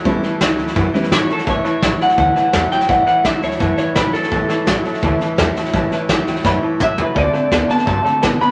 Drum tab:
HH |----p-------p---|----p-------p---|----p-------p---|----p-------p---|
SD |o-o-o-ooo-ooo-oo|o-o-o-ooo-o-o-oo|o-o-o-ooo-o-o-oo|o-o-o-ooo-o-o-oo|
T2 |----------------|----------------|----------------|----------------|
FT |----------------|----------------|----------------|----------------|
BD |o-------o-------|o---o---o---o---|o---o---o---o---|o---o---o---o---|

HH |----p-------p---|----p-------p---|
SD |o-o-o-ooo-------|o-o-o-ooo-o-o-o-|
T2 |------------o---|----------------|
FT |--------------o-|----------------|
BD |o---o---o---o---|o---o---o---o---|